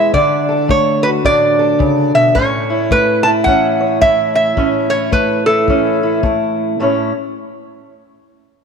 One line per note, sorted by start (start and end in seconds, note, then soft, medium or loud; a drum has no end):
0.00 0.11 B2 medium
0.00 0.10 E3 medium
0.00 0.11 G#3 medium
0.00 0.11 E4 medium
0.00 0.11 G#4 medium
0.00 0.11 B4 medium
0.00 0.12 E5 medium
0.14 2.36 D3 medium
0.14 1.24 D4 medium
0.14 0.70 D5 medium
0.14 kick medium
0.49 1.59 A4 medium
0.68 2.91 A3 medium
0.68 1.05 C#5 medium
0.68 kick medium
1.03 2.34 F#4 medium
1.03 1.09 B4 medium
1.24 1.78 A2 medium
1.24 2.33 D4 medium
1.24 2.14 D5 medium
1.24 kick medium
1.59 3.80 A4 medium
1.79 2.14 C#3 medium
1.79 kick medium
2.14 2.36 B2 medium
2.14 2.37 E5 medium
2.35 4.56 A2 medium
2.35 3.47 C#4 medium
2.35 2.93 C#5 medium
2.35 kick medium
2.70 3.26 E4 medium
2.91 4.00 A3 medium
2.91 3.27 B4 medium
2.91 kick medium
3.23 4.01 E4 medium
3.23 3.29 A5 medium
3.44 5.68 E3 medium
3.44 4.57 C#4 medium
3.44 4.01 F#5 medium
3.44 kick medium
3.80 6.83 C#5 medium
4.01 5.11 A3 medium
4.01 4.90 E4 medium
4.01 4.34 E5 medium
4.01 kick medium
4.35 4.87 E5 medium
4.57 6.79 A2 medium
4.57 5.68 C#4 medium
4.57 kick medium
4.90 5.46 E4 medium
4.90 5.12 C#5 medium
5.12 6.22 A3 medium
5.12 5.46 B4 medium
5.12 kick medium
5.46 6.02 E4 medium
5.46 6.20 A4 medium
5.68 6.77 E3 medium
5.68 6.78 C#4 medium
5.68 kick medium
6.03 6.22 E4 medium
6.23 6.76 A3 medium
6.23 6.81 E4 medium
6.23 kick medium
6.80 7.10 A2 medium
6.80 7.10 A3 medium
6.80 7.11 C#4 medium
6.80 7.11 E4 medium
6.80 7.12 C#5 medium